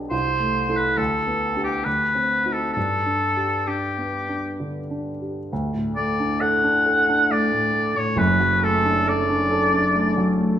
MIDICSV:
0, 0, Header, 1, 3, 480
1, 0, Start_track
1, 0, Key_signature, 1, "major"
1, 0, Tempo, 878477
1, 64, Time_signature, 3, 2, 24, 8
1, 1506, Tempo, 910470
1, 2958, Key_signature, 2, "major"
1, 3906, Tempo, 878477
1, 5700, End_track
2, 0, Start_track
2, 0, Title_t, "Oboe"
2, 0, Program_c, 0, 68
2, 55, Note_on_c, 0, 72, 57
2, 416, Note_on_c, 0, 71, 52
2, 424, Note_off_c, 0, 72, 0
2, 533, Note_on_c, 0, 69, 52
2, 542, Note_off_c, 0, 71, 0
2, 891, Note_off_c, 0, 69, 0
2, 894, Note_on_c, 0, 67, 52
2, 1008, Note_on_c, 0, 71, 63
2, 1016, Note_off_c, 0, 67, 0
2, 1382, Note_on_c, 0, 69, 46
2, 1390, Note_off_c, 0, 71, 0
2, 1492, Note_off_c, 0, 69, 0
2, 1495, Note_on_c, 0, 69, 55
2, 1988, Note_on_c, 0, 67, 39
2, 1996, Note_off_c, 0, 69, 0
2, 2473, Note_off_c, 0, 67, 0
2, 3196, Note_on_c, 0, 74, 69
2, 3433, Note_on_c, 0, 78, 71
2, 3440, Note_off_c, 0, 74, 0
2, 3909, Note_on_c, 0, 74, 72
2, 3918, Note_off_c, 0, 78, 0
2, 4269, Note_on_c, 0, 73, 60
2, 4278, Note_off_c, 0, 74, 0
2, 4381, Note_on_c, 0, 71, 62
2, 4389, Note_off_c, 0, 73, 0
2, 4634, Note_on_c, 0, 69, 66
2, 4642, Note_off_c, 0, 71, 0
2, 4877, Note_on_c, 0, 74, 69
2, 4885, Note_off_c, 0, 69, 0
2, 5589, Note_off_c, 0, 74, 0
2, 5700, End_track
3, 0, Start_track
3, 0, Title_t, "Grand piano"
3, 0, Program_c, 1, 0
3, 0, Control_c, 1, 64, 127
3, 0, Note_on_c, 1, 47, 31
3, 0, Note_on_c, 1, 59, 30
3, 0, Note_on_c, 1, 62, 32
3, 0, Note_on_c, 1, 67, 32
3, 59, Note_on_c, 1, 36, 43
3, 64, Note_off_c, 1, 67, 0
3, 75, Control_c, 1, 64, 0
3, 76, Note_off_c, 1, 47, 0
3, 77, Note_off_c, 1, 59, 0
3, 80, Note_off_c, 1, 62, 0
3, 181, Control_c, 1, 64, 127
3, 217, Note_on_c, 1, 57, 30
3, 378, Note_on_c, 1, 64, 26
3, 378, Note_on_c, 1, 69, 32
3, 473, Note_off_c, 1, 57, 0
3, 521, Note_off_c, 1, 64, 0
3, 521, Note_off_c, 1, 69, 0
3, 522, Note_off_c, 1, 36, 0
3, 533, Note_on_c, 1, 38, 43
3, 549, Control_c, 1, 64, 0
3, 630, Control_c, 1, 64, 127
3, 692, Note_on_c, 1, 59, 28
3, 852, Note_on_c, 1, 62, 26
3, 856, Note_on_c, 1, 67, 34
3, 949, Note_off_c, 1, 59, 0
3, 998, Note_off_c, 1, 38, 0
3, 998, Note_off_c, 1, 62, 0
3, 999, Note_off_c, 1, 67, 0
3, 1015, Note_on_c, 1, 38, 37
3, 1025, Control_c, 1, 64, 0
3, 1104, Control_c, 1, 64, 127
3, 1175, Note_on_c, 1, 60, 30
3, 1339, Note_on_c, 1, 63, 24
3, 1341, Note_on_c, 1, 66, 28
3, 1438, Note_off_c, 1, 60, 0
3, 1488, Note_off_c, 1, 63, 0
3, 1490, Note_off_c, 1, 66, 0
3, 1491, Note_off_c, 1, 38, 0
3, 1511, Note_on_c, 1, 43, 36
3, 1517, Control_c, 1, 64, 0
3, 1609, Control_c, 1, 64, 127
3, 1667, Note_on_c, 1, 62, 27
3, 1826, Note_on_c, 1, 67, 28
3, 1925, Note_off_c, 1, 62, 0
3, 1989, Note_on_c, 1, 62, 29
3, 2086, Note_off_c, 1, 67, 0
3, 2150, Note_on_c, 1, 59, 26
3, 2248, Note_off_c, 1, 62, 0
3, 2315, Note_on_c, 1, 62, 27
3, 2409, Note_off_c, 1, 59, 0
3, 2477, Note_on_c, 1, 50, 29
3, 2571, Note_off_c, 1, 62, 0
3, 2640, Note_on_c, 1, 62, 29
3, 2734, Note_off_c, 1, 50, 0
3, 2801, Note_on_c, 1, 67, 26
3, 2897, Note_off_c, 1, 62, 0
3, 2940, Note_off_c, 1, 43, 0
3, 2960, Note_off_c, 1, 67, 0
3, 2966, Control_c, 1, 64, 0
3, 2966, Note_on_c, 1, 38, 51
3, 3067, Control_c, 1, 64, 127
3, 3081, Note_on_c, 1, 45, 37
3, 3199, Note_on_c, 1, 57, 32
3, 3270, Note_off_c, 1, 45, 0
3, 3320, Note_on_c, 1, 62, 37
3, 3388, Note_off_c, 1, 57, 0
3, 3433, Note_on_c, 1, 69, 42
3, 3508, Note_off_c, 1, 62, 0
3, 3553, Note_on_c, 1, 62, 39
3, 3624, Note_off_c, 1, 69, 0
3, 3671, Note_on_c, 1, 69, 39
3, 3742, Note_off_c, 1, 62, 0
3, 3791, Note_on_c, 1, 62, 44
3, 3859, Note_off_c, 1, 69, 0
3, 3904, Note_on_c, 1, 57, 42
3, 3979, Note_off_c, 1, 62, 0
3, 4019, Note_on_c, 1, 45, 42
3, 4096, Note_off_c, 1, 57, 0
3, 4138, Note_on_c, 1, 57, 36
3, 4212, Note_off_c, 1, 45, 0
3, 4255, Note_on_c, 1, 45, 38
3, 4332, Note_off_c, 1, 57, 0
3, 4365, Note_off_c, 1, 38, 0
3, 4371, Note_on_c, 1, 30, 49
3, 4377, Note_on_c, 1, 42, 55
3, 4378, Note_off_c, 1, 45, 0
3, 4392, Control_c, 1, 64, 0
3, 4488, Control_c, 1, 64, 127
3, 4501, Note_on_c, 1, 54, 37
3, 4623, Note_on_c, 1, 57, 36
3, 4703, Note_off_c, 1, 54, 0
3, 4748, Note_on_c, 1, 62, 34
3, 4825, Note_off_c, 1, 57, 0
3, 4870, Note_on_c, 1, 69, 44
3, 4946, Note_off_c, 1, 62, 0
3, 4994, Note_on_c, 1, 62, 43
3, 5065, Note_off_c, 1, 69, 0
3, 5108, Note_on_c, 1, 69, 45
3, 5186, Note_off_c, 1, 62, 0
3, 5231, Note_on_c, 1, 62, 50
3, 5301, Note_off_c, 1, 69, 0
3, 5348, Note_on_c, 1, 57, 39
3, 5422, Note_off_c, 1, 62, 0
3, 5471, Note_on_c, 1, 54, 39
3, 5539, Note_off_c, 1, 57, 0
3, 5584, Note_on_c, 1, 57, 42
3, 5658, Note_off_c, 1, 54, 0
3, 5700, Note_off_c, 1, 30, 0
3, 5700, Note_off_c, 1, 42, 0
3, 5700, Note_off_c, 1, 57, 0
3, 5700, End_track
0, 0, End_of_file